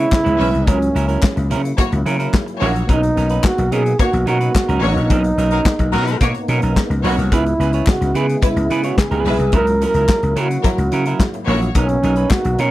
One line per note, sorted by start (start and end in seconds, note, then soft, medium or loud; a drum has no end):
0.00 0.65 C#3 medium
0.00 0.65 G#3 medium
0.00 0.65 B3 medium
0.00 0.10 C#4 soft
0.00 0.11 E4 medium
0.00 0.70 E4 loud
0.00 2.84 E4 medium
0.00 0.12 C#5 medium
0.11 muted clean electric guitar stroke soft
0.11 kick loud
0.11 snare loud
0.11 clap medium
0.24 0.36 C#2 medium
0.24 0.37 G#3 medium
0.24 0.38 C#4 medium
0.24 0.38 E4 medium
0.24 0.39 B4 medium
0.24 closed hi-hat soft
0.38 0.51 B1 medium
0.38 0.55 G#3 medium
0.38 0.63 C#4 loud
0.38 0.52 C#4 medium
0.38 0.52 E4 medium
0.38 0.63 B4 medium
0.38 0.52 B4 medium
0.38 0.63 E5 loud
0.38 open hi-hat medium
0.53 0.64 C2 medium
0.53 muted clean electric guitar stroke soft
0.53 closed hi-hat soft
0.66 0.88 C#2 loud
0.66 0.88 F#3 medium
0.66 2.86 F#3 medium
0.66 7.27 A#3 medium
0.66 0.81 C#4 medium
0.66 1.51 C#4 loud
0.66 0.80 E4 medium
0.66 0.80 A#4 medium
0.66 kick loud
0.66 closed hi-hat medium
0.81 muted clean electric guitar stroke soft
0.81 closed hi-hat soft
0.95 1.16 C#2 medium
0.95 1.09 F#3 medium
0.95 1.08 C#4 medium
0.95 1.08 E4 medium
0.95 1.07 A#4 medium
0.95 closed hi-hat medium
1.08 1.22 F#3 medium
1.08 1.22 C#4 soft
1.08 1.22 E4 medium
1.08 1.22 A#4 medium
1.08 closed hi-hat soft
1.23 kick loud
1.23 snare loud
1.23 clap loud
1.36 1.53 C#2 medium
1.36 muted clean electric guitar stroke soft
1.36 closed hi-hat medium
1.50 1.71 C#3 medium
1.50 1.72 F#3 medium
1.50 1.64 C#4 medium
1.50 1.63 E4 loud
1.50 1.63 A#4 medium
1.50 closed hi-hat medium
1.64 muted clean electric guitar stroke soft
1.64 closed hi-hat medium
1.77 1.90 A#3 medium
1.77 1.89 F#4 loud
1.77 1.89 C#5 loud
1.77 muted clean electric guitar stroke soft
1.77 kick loud
1.77 closed hi-hat medium
1.92 2.03 C#2 loud
1.92 muted clean electric guitar stroke medium
1.92 closed hi-hat soft
2.06 2.27 C#3 loud
2.06 2.19 F#3 loud
2.06 2.18 C#4 medium
2.06 2.18 E4 loud
2.06 2.18 A#4 medium
2.06 closed hi-hat medium
2.19 2.37 F#3 medium
2.19 2.36 C#4 medium
2.19 2.36 E4 medium
2.19 2.36 A#4 medium
2.19 closed hi-hat soft
2.34 kick loud
2.34 snare loud
2.34 clap loud
2.46 muted clean electric guitar stroke medium
2.46 closed hi-hat soft
2.60 2.82 A#1 medium
2.60 2.82 F#3 medium
2.60 2.85 A#3 loud
2.60 2.74 C#4 loud
2.60 2.73 E4 loud
2.60 2.85 F#4 loud
2.60 2.85 C#5 loud
2.60 2.74 C#5 loud
2.60 open hi-hat medium
2.74 muted clean electric guitar stroke soft
2.74 closed hi-hat medium
2.87 3.09 B1 loud
2.87 3.10 F#3 medium
2.87 9.49 B3 medium
2.87 3.03 C#4 medium
2.87 7.27 D#4 medium
2.87 3.03 D#4 medium
2.87 3.02 A#4 medium
2.87 kick loud
2.87 closed hi-hat medium
2.94 3.43 D#4 loud
3.03 muted clean electric guitar stroke medium
3.03 closed hi-hat medium
3.17 3.37 B1 loud
3.17 3.31 F#3 medium
3.17 3.30 C#4 medium
3.17 3.29 D#4 medium
3.17 3.30 A#4 medium
3.17 closed hi-hat medium
3.30 3.44 F#3 medium
3.30 3.44 C#4 medium
3.30 3.45 D#4 medium
3.30 3.46 B4 medium
3.30 closed hi-hat soft
3.44 3.74 F#4 loud
3.44 kick loud
3.44 snare loud
3.44 clap loud
3.58 3.69 B1 loud
3.58 muted clean electric guitar stroke soft
3.58 closed hi-hat medium
3.72 3.93 B2 medium
3.72 3.93 F#3 medium
3.72 3.85 C#4 loud
3.72 3.85 D#4 loud
3.72 4.00 G#4 loud
3.72 3.84 A#4 loud
3.72 closed hi-hat loud
3.86 muted clean electric guitar stroke soft
3.86 closed hi-hat soft
3.99 4.12 A#3 loud
3.99 4.11 F#4 medium
3.99 4.26 F#4 loud
3.99 4.12 C#5 loud
3.99 muted clean electric guitar stroke soft
3.99 kick loud
3.99 closed hi-hat medium
4.13 4.24 B1 loud
4.13 muted clean electric guitar stroke soft
4.13 closed hi-hat medium
4.26 4.48 B2 medium
4.26 4.41 F#3 medium
4.26 4.40 C#4 medium
4.26 4.40 D#4 loud
4.26 4.80 F#4 loud
4.26 4.40 A#4 loud
4.26 closed hi-hat medium
4.41 4.54 F#3 medium
4.41 4.54 C#4 soft
4.41 4.54 D#4 medium
4.41 closed hi-hat soft
4.55 muted clean electric guitar stroke medium
4.55 kick loud
4.55 snare loud
4.55 clap loud
4.69 4.79 C#2 medium
4.69 4.82 F#3 medium
4.69 4.83 C#4 medium
4.69 4.83 D#4 medium
4.69 4.83 A#4 loud
4.69 closed hi-hat medium
4.83 4.93 A1 medium
4.83 4.99 F#3 medium
4.83 5.06 A#3 medium
4.83 4.96 C#4 medium
4.83 6.45 D#4 loud
4.83 4.96 D#4 medium
4.83 5.06 F#4 loud
4.83 4.95 A#4 medium
4.83 5.06 C#5 loud
4.83 open hi-hat medium
4.96 5.06 A#1 medium
4.96 muted clean electric guitar stroke soft
4.96 closed hi-hat soft
5.10 5.31 B1 loud
5.10 5.31 F#3 medium
5.10 5.25 C#4 medium
5.10 5.24 D#4 loud
5.10 5.23 A#4 medium
5.10 kick loud
5.10 closed hi-hat medium
5.24 muted clean electric guitar stroke soft
5.24 closed hi-hat medium
5.38 5.58 B1 loud
5.38 5.52 F#3 medium
5.38 5.52 C#4 medium
5.38 5.51 D#4 medium
5.38 5.51 A#4 medium
5.38 closed hi-hat medium
5.51 5.60 F#3 medium
5.51 5.65 F#3 medium
5.51 5.65 C#4 medium
5.51 5.60 D#4 medium
5.51 5.65 D#4 medium
5.51 5.60 A#4 medium
5.51 5.66 A#4 medium
5.51 closed hi-hat soft
5.65 kick loud
5.65 snare loud
5.65 clap loud
5.79 5.95 B1 medium
5.79 muted clean electric guitar stroke soft
5.79 kick medium
5.79 closed hi-hat medium
5.92 6.14 B2 medium
5.92 6.16 F#3 loud
5.92 6.14 F#3 medium
5.92 6.07 C#4 loud
5.92 6.16 D#4 medium
5.92 6.07 D#4 loud
5.92 6.16 A#4 loud
5.92 6.06 A#4 loud
5.92 closed hi-hat medium
6.07 muted clean electric guitar stroke soft
6.07 closed hi-hat medium
6.21 6.31 B2 loud
6.21 6.33 A#3 loud
6.21 6.33 F#4 medium
6.21 6.33 C#5 loud
6.21 muted clean electric guitar stroke soft
6.21 kick loud
6.21 closed hi-hat medium
6.35 muted clean electric guitar stroke soft
6.35 closed hi-hat soft
6.48 6.59 B2 medium
6.48 6.63 F#3 medium
6.48 6.63 C#4 medium
6.48 6.62 D#4 medium
6.48 6.62 A#4 medium
6.48 closed hi-hat medium
6.62 6.73 B1 medium
6.62 6.80 F#3 medium
6.62 6.80 C#4 medium
6.62 6.79 D#4 medium
6.62 6.79 A#4 medium
6.62 closed hi-hat soft
6.76 kick medium
6.76 snare loud
6.76 clap loud
6.90 7.00 C#2 medium
6.90 muted clean electric guitar stroke medium
6.90 closed hi-hat soft
7.04 7.14 B1 medium
7.04 7.25 F#3 medium
7.04 7.28 A#3 medium
7.04 7.19 C#4 loud
7.04 7.18 D#4 medium
7.04 7.28 F#4 loud
7.04 7.18 B4 loud
7.04 7.28 C#5 loud
7.04 open hi-hat medium
7.18 7.32 C2 medium
7.18 muted clean electric guitar stroke soft
7.18 closed hi-hat medium
7.31 7.52 C#2 loud
7.31 9.51 C#3 medium
7.31 9.51 G#3 medium
7.31 7.53 B3 medium
7.31 11.71 E4 medium
7.31 7.46 E4 medium
7.31 7.92 E4 loud
7.31 7.46 G#4 loud
7.31 7.45 B4 loud
7.31 kick loud
7.31 closed hi-hat medium
7.46 muted clean electric guitar stroke medium
7.46 closed hi-hat soft
7.60 7.80 C#2 medium
7.60 7.74 B3 medium
7.60 7.74 E4 medium
7.60 7.73 G#4 medium
7.60 7.74 B4 medium
7.60 closed hi-hat medium
7.73 7.86 B3 soft
7.73 7.86 E4 medium
7.73 7.86 G#4 medium
7.73 7.88 C#5 medium
7.73 closed hi-hat soft
7.87 8.19 F#4 medium
7.87 kick loud
7.87 snare loud
7.87 clap loud
8.01 8.12 C#2 medium
8.01 muted clean electric guitar stroke medium
8.01 snare soft
8.01 closed hi-hat medium
8.14 8.35 C#3 loud
8.14 8.36 B3 medium
8.14 8.29 E4 loud
8.14 8.28 G#4 loud
8.14 8.48 G#4 medium
8.14 8.28 B4 loud
8.14 closed hi-hat medium
8.29 muted clean electric guitar stroke soft
8.29 closed hi-hat medium
8.42 8.54 G#3 medium
8.42 8.54 E4 medium
8.42 8.54 B4 loud
8.42 muted clean electric guitar stroke soft
8.42 kick loud
8.42 closed hi-hat medium
8.47 8.90 E4 loud
8.56 8.67 C#2 loud
8.56 muted clean electric guitar stroke soft
8.56 closed hi-hat soft
8.70 8.91 C#3 loud
8.70 8.84 B3 medium
8.70 8.84 E4 medium
8.70 8.84 G#4 medium
8.70 8.84 B4 loud
8.70 closed hi-hat medium
8.84 8.97 B3 medium
8.84 8.97 E4 medium
8.84 8.98 G#4 medium
8.84 8.99 C#5 medium
8.84 closed hi-hat soft
8.88 9.02 F#4 medium
8.98 9.55 G#4 loud
8.98 muted clean electric guitar stroke medium
8.98 kick loud
8.98 snare loud
8.98 clap loud
9.11 9.22 C#2 medium
9.11 9.26 B3 medium
9.11 9.26 E4 medium
9.11 9.26 G#4 loud
9.11 9.26 B4 medium
9.11 closed hi-hat soft
9.25 9.36 B1 medium
9.25 9.49 G#3 loud
9.25 9.43 B3 medium
9.25 9.49 E4 loud
9.25 9.40 E4 medium
9.25 9.40 G#4 medium
9.25 9.49 B4 loud
9.25 9.39 B4 medium
9.25 open hi-hat medium
9.39 9.49 C2 loud
9.39 muted clean electric guitar stroke soft
9.39 closed hi-hat soft
9.52 9.84 C#2 loud
9.52 9.74 F#3 medium
9.52 11.73 F#3 medium
9.52 12.71 A#3 medium
9.52 9.67 C#4 medium
9.52 9.67 E4 medium
9.52 9.67 A#4 loud
9.52 kick loud
9.52 closed hi-hat medium
9.56 9.81 A#4 loud
9.67 muted clean electric guitar stroke soft
9.67 closed hi-hat medium
9.81 9.97 F#3 medium
9.81 9.96 C#4 medium
9.81 9.95 E4 medium
9.81 9.95 A#4 medium
9.81 closed hi-hat medium
9.86 10.42 A#4 loud
9.94 10.05 C#2 medium
9.94 10.07 F#3 medium
9.94 10.08 C#4 medium
9.94 10.08 E4 medium
9.94 10.09 A#4 medium
9.94 closed hi-hat soft
10.09 kick loud
10.09 snare loud
10.09 clap loud
10.23 10.33 C#2 medium
10.23 muted clean electric guitar stroke soft
10.23 closed hi-hat medium
10.36 10.57 C#3 medium
10.36 10.57 F#3 medium
10.36 10.50 C#4 loud
10.36 10.50 E4 loud
10.36 10.49 A#4 loud
10.36 closed hi-hat loud
10.41 11.49 F#4 medium
10.50 muted clean electric guitar stroke medium
10.50 closed hi-hat medium
10.63 10.75 F#3 medium
10.63 10.76 E4 medium
10.63 10.75 A#4 loud
10.63 muted clean electric guitar stroke soft
10.63 kick loud
10.63 closed hi-hat medium
10.78 10.88 C#2 loud
10.78 muted clean electric guitar stroke soft
10.78 closed hi-hat soft
10.92 11.13 C#3 loud
10.92 11.07 F#3 medium
10.92 11.06 C#4 medium
10.92 11.06 E4 medium
10.92 11.06 A#4 medium
10.92 closed hi-hat medium
11.06 11.23 F#3 medium
11.06 11.23 C#4 medium
11.06 11.23 E4 medium
11.06 11.23 A#4 medium
11.06 closed hi-hat medium
11.20 kick loud
11.20 snare loud
11.20 clap medium
11.34 muted clean electric guitar stroke medium
11.34 closed hi-hat soft
11.47 11.68 A#1 medium
11.47 11.69 F#3 medium
11.47 11.71 A#3 medium
11.47 11.62 C#4 medium
11.47 11.62 E4 loud
11.47 11.71 F#4 medium
11.47 11.71 C#5 loud
11.47 11.62 C#5 loud
11.47 open hi-hat medium
11.62 muted clean electric guitar stroke medium
11.62 closed hi-hat medium
11.75 11.96 B1 loud
11.75 11.97 F#3 medium
11.75 12.71 B3 medium
11.75 11.90 C#4 medium
11.75 12.33 C#4 loud
11.75 12.71 D#4 medium
11.75 11.89 D#4 medium
11.75 11.89 A#4 medium
11.75 kick loud
11.75 closed hi-hat medium
11.89 muted clean electric guitar stroke medium
11.89 closed hi-hat soft
12.03 12.24 B1 medium
12.03 12.17 F#3 medium
12.03 12.16 C#4 medium
12.03 12.16 D#4 medium
12.03 12.17 A#4 medium
12.03 closed hi-hat medium
12.16 12.30 F#3 medium
12.16 12.30 C#4 medium
12.16 12.30 D#4 medium
12.16 12.32 B4 medium
12.16 closed hi-hat soft
12.30 12.62 F#4 loud
12.30 kick loud
12.30 snare loud
12.30 clap loud
12.44 12.55 B1 loud
12.44 muted clean electric guitar stroke soft
12.44 closed hi-hat medium
12.59 12.71 B2 loud
12.59 12.71 F#3 medium
12.59 12.71 C#4 medium
12.59 12.71 C#4 loud
12.59 12.71 D#4 loud
12.59 12.71 A#4 loud
12.59 closed hi-hat medium